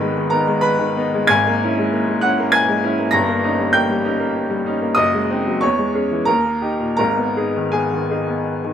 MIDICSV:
0, 0, Header, 1, 2, 480
1, 0, Start_track
1, 0, Key_signature, 5, "minor"
1, 0, Tempo, 606673
1, 498, Tempo, 678733
1, 978, Time_signature, 3, 2, 24, 8
1, 978, Tempo, 623701
1, 1458, Tempo, 603015
1, 3378, Tempo, 638978
1, 4338, Tempo, 657895
1, 4818, Tempo, 710059
1, 5298, Tempo, 744417
1, 6422, End_track
2, 0, Start_track
2, 0, Title_t, "Upright piano"
2, 0, Program_c, 0, 0
2, 0, Control_c, 0, 64, 127
2, 0, Note_on_c, 0, 32, 68
2, 0, Note_on_c, 0, 44, 73
2, 0, Note_on_c, 0, 51, 61
2, 0, Note_on_c, 0, 56, 60
2, 0, Note_on_c, 0, 59, 57
2, 0, Note_on_c, 0, 63, 55
2, 0, Note_on_c, 0, 71, 76
2, 0, Note_on_c, 0, 83, 109
2, 9, Note_off_c, 0, 56, 0
2, 9, Note_on_c, 0, 56, 58
2, 89, Note_off_c, 0, 51, 0
2, 134, Note_on_c, 0, 51, 56
2, 205, Note_off_c, 0, 56, 0
2, 220, Note_off_c, 0, 71, 0
2, 238, Note_on_c, 0, 82, 96
2, 247, Note_off_c, 0, 83, 0
2, 248, Note_on_c, 0, 70, 66
2, 253, Note_off_c, 0, 59, 0
2, 253, Note_on_c, 0, 59, 47
2, 261, Note_off_c, 0, 63, 0
2, 261, Note_on_c, 0, 63, 58
2, 327, Note_off_c, 0, 51, 0
2, 362, Note_off_c, 0, 59, 0
2, 367, Note_off_c, 0, 63, 0
2, 377, Note_on_c, 0, 56, 60
2, 476, Note_off_c, 0, 70, 0
2, 484, Note_on_c, 0, 83, 99
2, 488, Note_off_c, 0, 82, 0
2, 488, Note_on_c, 0, 71, 76
2, 609, Note_on_c, 0, 51, 61
2, 733, Note_on_c, 0, 59, 55
2, 738, Note_on_c, 0, 63, 66
2, 758, Note_off_c, 0, 56, 0
2, 807, Note_off_c, 0, 51, 0
2, 845, Note_off_c, 0, 59, 0
2, 848, Note_off_c, 0, 63, 0
2, 860, Note_on_c, 0, 56, 58
2, 945, Note_off_c, 0, 32, 0
2, 945, Note_off_c, 0, 71, 0
2, 946, Note_off_c, 0, 44, 0
2, 954, Note_on_c, 0, 92, 116
2, 964, Note_on_c, 0, 32, 72
2, 966, Note_on_c, 0, 80, 88
2, 972, Note_off_c, 0, 83, 0
2, 974, Note_on_c, 0, 44, 78
2, 979, Note_off_c, 0, 56, 0
2, 993, Control_c, 0, 64, 0
2, 1101, Note_on_c, 0, 58, 68
2, 1132, Control_c, 0, 64, 127
2, 1231, Note_on_c, 0, 61, 59
2, 1231, Note_on_c, 0, 64, 62
2, 1293, Note_off_c, 0, 58, 0
2, 1333, Note_off_c, 0, 61, 0
2, 1333, Note_off_c, 0, 64, 0
2, 1344, Note_on_c, 0, 56, 59
2, 1457, Note_on_c, 0, 58, 60
2, 1532, Note_off_c, 0, 56, 0
2, 1576, Note_on_c, 0, 56, 55
2, 1651, Note_off_c, 0, 58, 0
2, 1662, Note_off_c, 0, 80, 0
2, 1682, Note_on_c, 0, 90, 92
2, 1687, Note_off_c, 0, 92, 0
2, 1690, Note_on_c, 0, 78, 79
2, 1699, Note_on_c, 0, 61, 57
2, 1702, Note_on_c, 0, 64, 56
2, 1771, Note_off_c, 0, 56, 0
2, 1808, Note_off_c, 0, 61, 0
2, 1810, Note_off_c, 0, 64, 0
2, 1826, Note_on_c, 0, 58, 66
2, 1919, Note_off_c, 0, 78, 0
2, 1925, Note_on_c, 0, 92, 115
2, 1932, Note_off_c, 0, 90, 0
2, 1938, Note_on_c, 0, 80, 83
2, 2057, Note_on_c, 0, 56, 59
2, 2180, Note_on_c, 0, 61, 62
2, 2181, Note_on_c, 0, 64, 68
2, 2208, Note_off_c, 0, 58, 0
2, 2251, Note_off_c, 0, 56, 0
2, 2289, Note_off_c, 0, 61, 0
2, 2289, Note_off_c, 0, 64, 0
2, 2298, Note_on_c, 0, 58, 60
2, 2383, Note_off_c, 0, 32, 0
2, 2389, Note_off_c, 0, 44, 0
2, 2389, Note_off_c, 0, 80, 0
2, 2395, Note_on_c, 0, 94, 112
2, 2403, Note_on_c, 0, 82, 82
2, 2409, Note_on_c, 0, 31, 75
2, 2413, Note_on_c, 0, 43, 77
2, 2415, Note_off_c, 0, 92, 0
2, 2421, Note_off_c, 0, 58, 0
2, 2437, Control_c, 0, 64, 0
2, 2531, Note_on_c, 0, 58, 66
2, 2563, Control_c, 0, 64, 127
2, 2658, Note_on_c, 0, 61, 57
2, 2659, Note_on_c, 0, 63, 64
2, 2730, Note_off_c, 0, 58, 0
2, 2769, Note_off_c, 0, 61, 0
2, 2770, Note_off_c, 0, 63, 0
2, 2777, Note_on_c, 0, 55, 59
2, 2862, Note_off_c, 0, 82, 0
2, 2888, Note_on_c, 0, 91, 101
2, 2890, Note_off_c, 0, 94, 0
2, 2893, Note_on_c, 0, 79, 77
2, 2902, Note_on_c, 0, 58, 58
2, 2971, Note_off_c, 0, 55, 0
2, 3020, Note_on_c, 0, 55, 58
2, 3092, Note_off_c, 0, 58, 0
2, 3138, Note_on_c, 0, 61, 56
2, 3142, Note_on_c, 0, 63, 55
2, 3210, Note_off_c, 0, 55, 0
2, 3246, Note_off_c, 0, 61, 0
2, 3247, Note_off_c, 0, 63, 0
2, 3261, Note_on_c, 0, 58, 64
2, 3341, Note_off_c, 0, 79, 0
2, 3370, Note_off_c, 0, 91, 0
2, 3494, Note_on_c, 0, 55, 55
2, 3616, Note_on_c, 0, 61, 58
2, 3621, Note_on_c, 0, 63, 61
2, 3637, Note_off_c, 0, 58, 0
2, 3684, Note_off_c, 0, 55, 0
2, 3722, Note_off_c, 0, 61, 0
2, 3725, Note_off_c, 0, 63, 0
2, 3734, Note_on_c, 0, 58, 53
2, 3817, Note_off_c, 0, 31, 0
2, 3819, Note_off_c, 0, 43, 0
2, 3830, Note_on_c, 0, 87, 106
2, 3839, Note_on_c, 0, 30, 66
2, 3840, Note_on_c, 0, 75, 85
2, 3850, Note_on_c, 0, 42, 68
2, 3855, Note_off_c, 0, 58, 0
2, 3866, Control_c, 0, 64, 0
2, 3970, Control_c, 0, 64, 127
2, 3974, Note_on_c, 0, 56, 65
2, 4101, Note_on_c, 0, 60, 53
2, 4103, Note_on_c, 0, 63, 53
2, 4169, Note_off_c, 0, 56, 0
2, 4208, Note_off_c, 0, 60, 0
2, 4209, Note_off_c, 0, 63, 0
2, 4224, Note_on_c, 0, 54, 56
2, 4301, Note_off_c, 0, 75, 0
2, 4316, Note_off_c, 0, 30, 0
2, 4321, Note_off_c, 0, 42, 0
2, 4326, Note_off_c, 0, 87, 0
2, 4327, Note_on_c, 0, 85, 100
2, 4337, Note_on_c, 0, 73, 76
2, 4341, Note_off_c, 0, 54, 0
2, 4344, Note_on_c, 0, 40, 70
2, 4353, Control_c, 0, 64, 0
2, 4455, Note_on_c, 0, 56, 53
2, 4493, Control_c, 0, 64, 127
2, 4569, Note_on_c, 0, 61, 51
2, 4577, Note_on_c, 0, 68, 51
2, 4646, Note_off_c, 0, 56, 0
2, 4680, Note_off_c, 0, 61, 0
2, 4685, Note_off_c, 0, 68, 0
2, 4699, Note_on_c, 0, 52, 58
2, 4788, Note_off_c, 0, 73, 0
2, 4799, Note_on_c, 0, 82, 98
2, 4806, Note_off_c, 0, 40, 0
2, 4810, Note_on_c, 0, 70, 74
2, 4813, Note_off_c, 0, 85, 0
2, 4819, Note_on_c, 0, 39, 71
2, 4820, Note_off_c, 0, 52, 0
2, 4829, Control_c, 0, 64, 0
2, 4932, Note_on_c, 0, 58, 49
2, 4967, Control_c, 0, 64, 127
2, 5048, Note_on_c, 0, 63, 51
2, 5048, Note_on_c, 0, 67, 54
2, 5122, Note_off_c, 0, 58, 0
2, 5158, Note_off_c, 0, 63, 0
2, 5158, Note_off_c, 0, 67, 0
2, 5165, Note_on_c, 0, 46, 56
2, 5267, Note_off_c, 0, 70, 0
2, 5272, Note_off_c, 0, 82, 0
2, 5282, Note_on_c, 0, 82, 97
2, 5284, Note_off_c, 0, 39, 0
2, 5291, Note_on_c, 0, 70, 74
2, 5295, Note_off_c, 0, 46, 0
2, 5295, Note_on_c, 0, 32, 63
2, 5301, Note_on_c, 0, 44, 66
2, 5314, Control_c, 0, 64, 0
2, 5414, Note_on_c, 0, 59, 55
2, 5433, Control_c, 0, 64, 127
2, 5539, Note_on_c, 0, 63, 47
2, 5543, Note_on_c, 0, 68, 58
2, 5616, Note_off_c, 0, 59, 0
2, 5653, Note_off_c, 0, 63, 0
2, 5655, Note_off_c, 0, 68, 0
2, 5670, Note_on_c, 0, 51, 51
2, 5761, Note_off_c, 0, 70, 0
2, 5767, Note_on_c, 0, 80, 74
2, 5775, Note_on_c, 0, 68, 53
2, 5783, Note_off_c, 0, 82, 0
2, 5784, Note_on_c, 0, 59, 53
2, 5863, Note_off_c, 0, 51, 0
2, 5903, Note_on_c, 0, 51, 55
2, 5978, Note_off_c, 0, 59, 0
2, 6011, Note_off_c, 0, 68, 0
2, 6016, Note_on_c, 0, 63, 46
2, 6020, Note_on_c, 0, 68, 48
2, 6096, Note_off_c, 0, 51, 0
2, 6128, Note_off_c, 0, 63, 0
2, 6130, Note_off_c, 0, 68, 0
2, 6132, Note_on_c, 0, 59, 53
2, 6364, Note_on_c, 0, 51, 50
2, 6422, Note_off_c, 0, 32, 0
2, 6422, Note_off_c, 0, 44, 0
2, 6422, Note_off_c, 0, 51, 0
2, 6422, Note_off_c, 0, 59, 0
2, 6422, Note_off_c, 0, 80, 0
2, 6422, End_track
0, 0, End_of_file